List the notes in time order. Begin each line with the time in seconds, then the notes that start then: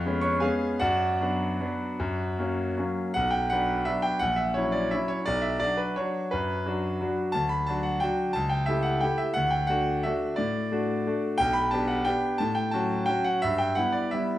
Already playing: F2 F5 C#6 F6
0.06 G#3 B3 C#4
0.21 C#5 C#6
0.40 G#3 B3 C#4 G#4 F5 G#5
0.79 F#2 F#4 D5 F#5
1.21 F#3 B3 D4
1.61 F#3 B3 D4
2.00 F#2
2.39 F#3 A#3 C#4
2.78 F#3 A#3 C#4
3.14 B1 F#5
3.31 G5
3.50 F#3 B3 D4 F#5
3.85 F#3 B3 D4 E5
4.02 G5
4.19 A#1 F#5
4.36 E5
4.54 F#3 C#4 E4 C#5
4.72 D5
4.91 F#3 C#4 E4 E5
5.08 C#5
5.26 B1 D5
5.42 E5
5.60 F#3 D4 F#4 D5
5.77 B4
5.96 F#3 D4 F#4 C#5
6.31 F#2 B4
6.66 F#3 D4 F#4
7.01 F#3 D4 F#4
7.32 D2 A5
7.49 B5
7.66 F#3 D4 F#4 A5
7.83 F#5
8.00 F#3 D4 F#4 G5
8.33 C#2 A5
8.49 G5
8.66 A3 E4 G4 E5
8.83 F#5
9.00 A3 E4 G4 G5
9.18 E5
9.34 D2 F#5
9.50 G5
9.67 A3 D4 F#4 F#5
10.03 A3 D4 F#4 E5
10.36 A2 D5
10.72 A3 D4 F#4
11.07 A3 D4 F#4
11.38 B1 G5
11.53 B5
11.71 B3 D4 G4 A5
11.87 F#5
12.05 B3 D4 G4 G5
12.38 A2 A5
12.55 G5
12.71 F#3 C#4 F#4 A5
13.06 F#3 C#4 F#4 G5
13.24 F#5
13.42 G2 E5
13.58 G5
13.75 G3 B3 E4 F#5
13.92 D5
14.11 G3 B3 E4 E5